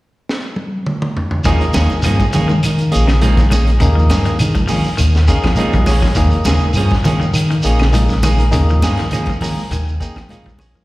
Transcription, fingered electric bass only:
1.46 D#2
1.76 D#2
1.92 muted fingered electric bass stroke
2.06 G2
2.36 D#3
2.65 D#3
2.95 A#1
3.81 D#2
4.11 G2
4.41 D#3
4.55 muted fingered electric bass stroke
4.70 D#3
5.00 D#2
5.58 muted fingered electric bass stroke
5.74 A#1
6.17 D#2
6.46 D#2
6.62 muted fingered electric bass stroke
6.75 G2
7.05 D#3
7.33 D#3
7.65 A#1
8.53 D#2
8.82 G2
9.12 D#3
9.28 muted fingered electric bass stroke
9.42 D#3
9.71 D#2
10.31 muted fingered electric bass stroke
10.46 A#1

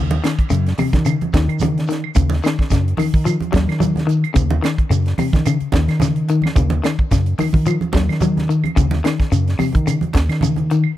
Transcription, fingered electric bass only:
Already playing: D#2
0.51 F#2
0.79 muted fingered electric bass stroke
0.93 D#3
1.21 muted fingered electric bass stroke
1.34 D#2
1.48 D#3
2.17 D#2
2.71 F#2
2.99 muted fingered electric bass stroke
3.14 D#3
3.40 muted fingered electric bass stroke
3.54 D#2
3.68 D#3
4.36 D#2
4.90 F#2
5.18 muted fingered electric bass stroke
5.33 D#3
5.61 muted fingered electric bass stroke
5.73 D#2
5.88 D#3
6.56 D#2
7.11 F#2
7.39 muted fingered electric bass stroke
7.54 D#3
7.81 muted fingered electric bass stroke
7.94 D#2
8.09 D#3
8.77 D#2
9.32 F#2
9.60 muted fingered electric bass stroke
9.74 D#3
10.02 muted fingered electric bass stroke
10.15 D#2
10.29 D#3

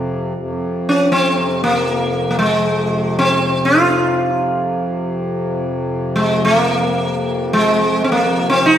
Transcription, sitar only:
0.89 C#4
1.12 C4
1.64 A#3
2.31 A#3
2.39 G#3
3.19 C4
3.65 F4
6.16 G#3
6.45 A3
6.60 A#3
7.53 G#3
8.04 C4
8.12 A#3
8.50 C4
8.66 D#4

